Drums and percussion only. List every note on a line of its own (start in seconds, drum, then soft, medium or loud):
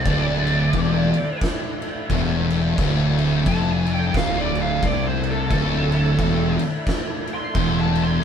0.06 kick loud
0.06 crash medium
0.47 crash medium
0.73 kick loud
0.73 crash medium
1.14 crash medium
1.41 kick loud
1.41 snare loud
1.41 crash medium
1.82 crash medium
2.10 kick loud
2.10 crash medium
2.50 crash medium
2.78 kick loud
2.78 crash medium
3.18 crash medium
3.46 kick loud
3.46 crash medium
3.86 crash medium
4.14 kick loud
4.14 snare loud
4.14 crash medium
4.55 crash medium
4.83 kick loud
4.83 crash medium
5.23 crash medium
5.51 kick loud
5.51 crash medium
5.92 crash medium
6.19 kick loud
6.19 crash medium
6.59 crash medium
6.87 kick loud
6.87 snare loud
6.87 crash medium
7.27 crash medium
7.55 kick loud
7.55 crash medium
7.95 crash medium